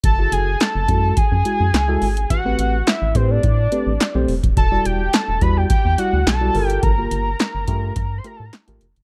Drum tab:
HH |x-x-x-x-x-x-x-ox|x-x-x-x-x-x-x-ox|x-x-x-x-x-x-x-ox|x-x-x-x-x-x-xxxx|
CP |----x-------x---|----x-------x---|----x-------x---|----x-------x---|
SD |----o-------o---|----o-------o---|----o-------o---|----o-------o---|
BD |o-----o-o-------|o-----o-o------o|o-----o-o-------|o-----o-o-------|